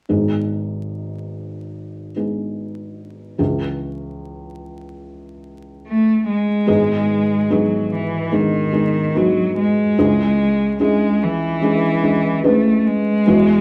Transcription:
0.09 3.34 G#1 soft
0.09 3.34 G#2 soft
0.09 2.11 G#3 soft
0.09 2.11 B3 soft
0.09 2.11 D#4 soft
0.09 2.11 G#4 soft
2.16 3.39 G#3 soft
2.16 3.39 B3 soft
2.16 3.39 D#4 soft
2.16 3.38 G#4 soft
3.38 6.63 C#2 soft
3.38 6.63 C#3 soft
3.38 6.63 E3 soft
3.38 6.64 C#4 soft
3.38 6.64 E4 soft
3.38 6.64 G#4 soft
5.87 6.25 A3 medium
6.29 7.54 G#3 medium
6.67 9.92 G#1 soft
6.67 9.92 G#2 soft
6.67 7.45 G#3 medium
6.67 7.46 B3 medium
6.67 7.46 D#4 medium
6.67 7.46 G#4 medium
7.50 7.92 F#3 medium
7.50 8.28 G#3 medium
7.50 8.28 B3 medium
7.50 8.28 D#4 soft
7.50 8.28 G#4 medium
7.94 8.36 E3 medium
8.32 9.19 D#3 medium
8.32 8.71 G#3 soft
8.32 8.71 B3 soft
8.32 8.71 D#4 soft
8.32 8.71 G#4 medium
8.73 9.12 G#3 soft
8.73 9.12 B3 soft
8.73 9.12 D#4 soft
8.73 9.12 G#4 medium
9.15 9.57 F#3 medium
9.15 9.93 G#3 medium
9.15 9.92 B3 soft
9.15 9.93 D#4 soft
9.15 9.93 F#4 medium
9.58 10.76 G#3 medium
9.98 13.22 C#2 soft
9.98 13.22 C#3 soft
9.98 10.75 G#3 medium
9.98 10.76 C#4 medium
9.98 10.75 E4 medium
9.98 10.76 G#4 medium
10.80 11.57 G#3 medium
10.80 11.25 G#3 medium
10.80 11.57 C#4 medium
10.80 11.57 E4 soft
10.80 11.58 G#4 medium
11.23 12.45 E3 medium
11.62 12.00 G#3 medium
11.62 12.00 C#4 soft
11.62 12.01 E4 medium
11.62 12.01 G#4 medium
12.02 12.41 G#3 soft
12.02 12.41 C#4 soft
12.02 12.42 E4 soft
12.02 12.42 G#4 medium
12.44 12.79 A3 medium
12.44 13.22 C#4 soft
12.44 13.22 E4 soft
12.44 13.21 G#4 medium
12.44 13.22 B4 medium
12.79 12.88 A3 soft
12.87 13.61 G#3 medium
13.26 13.61 E2 soft
13.26 13.61 E3 soft
13.26 13.61 G#3 medium
13.26 13.61 B3 medium
13.26 13.61 E4 medium
13.26 13.61 F#4 medium

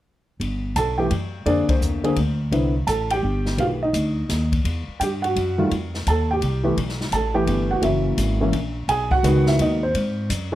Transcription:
0.40 0.74 G1 medium
0.40 kick soft
0.40 ride soft
0.76 1.10 B1 medium
0.76 0.98 A4 medium
0.76 0.97 A5 medium
0.76 kick soft
0.76 hi-hat pedal soft
0.76 ride medium
0.98 1.10 E3 medium
0.98 1.10 A3 soft
0.98 1.10 B3 soft
0.98 1.10 G4 medium
0.98 1.43 G5 medium
1.11 1.45 F#2 medium
1.11 kick soft
1.11 ride soft
1.46 1.67 F2 medium
1.46 2.00 D3 medium
1.46 2.00 A#3 soft
1.46 1.69 C4 soft
1.46 1.68 D4 medium
1.46 2.00 G#4 medium
1.46 1.70 D5 medium
1.46 kick soft
1.46 ride soft
1.68 2.03 C4 soft
1.68 2.36 C5 medium
1.68 muted upright bass stroke soft
1.68 kick medium
1.68 ride medium
1.81 2.16 E2 medium
1.81 hi-hat pedal soft
2.04 2.16 D3 medium
2.04 2.16 A#3 medium
2.04 2.16 C4 medium
2.04 2.16 G#4 medium
2.04 ride soft
2.16 2.51 D2 medium
2.16 kick soft
2.16 ride soft
2.51 2.86 C2 medium
2.51 2.73 D3 soft
2.51 2.73 B3 soft
2.51 2.73 C4 soft
2.51 2.73 E4 medium
2.51 kick soft
2.51 ride soft
2.87 3.22 A1 medium
2.87 3.09 A4 medium
2.87 3.09 A5 medium
2.87 kick soft
2.87 hi-hat pedal medium
2.87 ride soft
3.10 3.57 G4 medium
3.10 3.60 G5 medium
3.10 ride soft
3.23 3.57 G1 medium
3.23 kick soft
3.46 snare soft
3.57 3.92 B1 medium
3.57 3.78 D#3 soft
3.57 3.79 A3 soft
3.57 3.79 B3 soft
3.57 3.79 G4 soft
3.57 3.65 F5 medium
3.57 kick soft
3.57 ride soft
3.61 3.66 F4 medium
3.83 4.50 D#4 medium
3.83 4.49 D#5 medium
3.93 4.28 D2 medium
3.93 kick soft
3.93 hi-hat pedal medium
3.93 ride soft
4.29 4.64 D#2 medium
4.29 kick soft
4.29 snare soft
4.29 hi-hat pedal soft
4.29 ride soft
4.52 kick soft
4.52 ride soft
4.64 4.86 E2 medium
4.64 kick soft
4.64 ride soft
4.88 muted upright bass stroke soft
5.00 5.34 G2 medium
5.00 5.08 G4 medium
5.00 5.05 G5 medium
5.00 kick soft
5.00 hi-hat pedal soft
5.00 ride medium
5.22 5.68 F#4 medium
5.22 5.67 F#5 medium
5.22 ride soft
5.36 5.70 F#2 medium
5.36 kick soft
5.36 ride soft
5.58 5.69 D#3 medium
5.58 5.70 G3 medium
5.58 5.70 A3 medium
5.58 5.70 F4 medium
5.71 6.05 F2 medium
5.71 kick soft
5.71 ride soft
5.94 snare soft
6.07 6.41 D#2 medium
6.07 6.29 A4 medium
6.07 6.28 A5 medium
6.07 kick soft
6.07 hi-hat pedal soft
6.07 ride medium
6.31 6.63 G4 medium
6.31 6.74 G5 medium
6.41 6.75 C2 medium
6.41 kick soft
6.41 ride soft
6.63 6.75 E3 medium
6.63 6.75 A3 medium
6.63 6.76 B3 medium
6.63 6.76 G4 medium
6.77 7.11 B1 medium
6.77 kick soft
6.77 ride medium
6.89 snare soft
7.01 snare soft
7.11 7.46 A1 medium
7.11 7.35 A4 medium
7.11 7.34 A5 medium
7.11 kick soft
7.11 hi-hat pedal soft
7.11 ride soft
7.34 7.80 E3 medium
7.34 7.80 A3 medium
7.34 7.80 B3 medium
7.34 7.80 G4 medium
7.34 7.71 G5 medium
7.47 7.81 G1 medium
7.47 kick soft
7.47 ride soft
7.71 7.81 F#4 medium
7.71 7.82 F#5 medium
7.82 8.16 F#1 medium
7.82 8.35 E3 soft
7.82 8.35 A#3 soft
7.82 8.36 C#4 soft
7.82 8.36 F#4 medium
7.82 8.72 E5 medium
7.82 kick soft
7.82 ride soft
7.86 8.40 E4 medium
8.18 8.52 G#1 medium
8.18 kick soft
8.18 hi-hat pedal soft
8.18 ride medium
8.41 8.52 E3 medium
8.41 8.52 A#3 medium
8.41 8.52 C#4 medium
8.41 8.52 E4 medium
8.53 8.87 A#1 medium
8.53 kick soft
8.53 ride soft
8.88 9.22 B1 medium
8.88 9.10 G#4 medium
8.88 9.12 G#5 loud
8.88 kick soft
8.88 ride medium
9.11 9.23 F#4 medium
9.11 9.47 F#5 loud
9.11 kick medium
9.23 9.57 C#2 medium
9.23 9.77 D#3 medium
9.23 9.77 G#3 medium
9.23 9.77 B3 medium
9.23 9.78 F#4 medium
9.23 hi-hat pedal soft
9.23 ride medium
9.47 9.59 E4 medium
9.47 9.59 E5 medium
9.47 snare soft
9.58 9.93 D#2 medium
9.58 9.81 D#4 medium
9.58 9.81 D#5 medium
9.58 kick soft
9.58 ride medium
9.83 10.27 C4 medium
9.83 10.27 C5 medium
9.94 10.28 G#2 medium
9.94 kick soft
9.94 ride medium
10.30 10.55 F#2 medium
10.30 kick soft
10.30 hi-hat pedal medium
10.30 ride medium
10.52 10.55 D#3 medium

